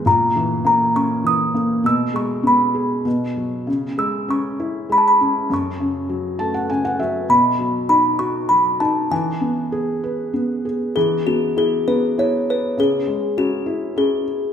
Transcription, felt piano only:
X:1
M:3/4
L:1/16
Q:1/4=100
K:E
V:1 name="Felt piano"
z12 | z12 | z12 | z6 a f g f e2 |
z12 | z12 | z12 | z12 |]
V:2 name="Felt piano"
^A,,2 E,2 ^A,2 C2 E,2 A,2 | B,,2 G,2 B,2 G2 B,,2 F,2 | C,2 G,2 C2 E2 G,2 C2 | F,,2 C,2 F,2 A,2 C,2 F,2 |
B,,2 F,2 D2 F2 F,2 D2 | E,2 B,2 G2 B2 B,2 G2 | E,2 B,2 E2 B,2 E4 | C,2 G,2 C2 E2 C4 |]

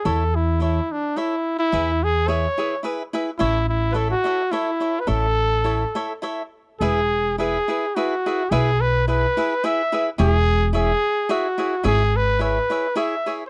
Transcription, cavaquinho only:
X:1
M:3/4
L:1/8
Q:1/4=107
K:A
V:1 name="Cavaquinho"
[EAce] z [EAce] z [EAce] z | [EGBe] z [EGBe] [EGBe] [EGBe] [EGBe] | [EAce] z [EAce] [EAce] [EAce] [EAce] | [EAce] z [EAce] [EAce] [EAce] z |
[K:E] [EGBe] z [EGBe] [EGBe] [EGBe] [EGBe] | [EGBe] z [EGBe] [EGBe] [EGBe] [EGBe] | [EGce] z [EGce] z [EGce] [EGce] | [EGce] z [EGce] [EGce] [EGce] [EGce] |]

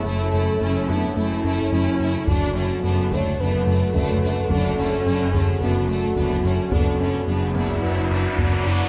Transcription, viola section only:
X:1
M:4/4
L:1/8
Q:1/4=108
K:Dlyd
V:1 name="Viola section"
A,2 C B, A, C3 | D C B, A, B, A,3 | D C3 B, A, B, C | D C B, E3 D B, |]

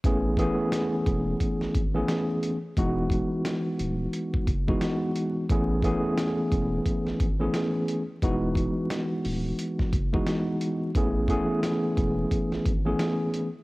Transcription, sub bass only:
X:1
M:4/4
L:1/16
Q:"Swing 16ths" 1/4=88
K:Alyd
V:1 name="Sub bass" clef=bass
A,,,3 z3 E,,,2 z G,,, G,,,2 z4 | E,,,3 z3 D,,,2 z F,,, F,,,2 z4 | A,,,3 z3 E,,,2 z G,,, G,,,2 z4 | E,,,3 z3 D,,,2 z F,,, F,,,2 z4 |
A,,,3 z3 E,,,2 z G,,, G,,,2 z4 |]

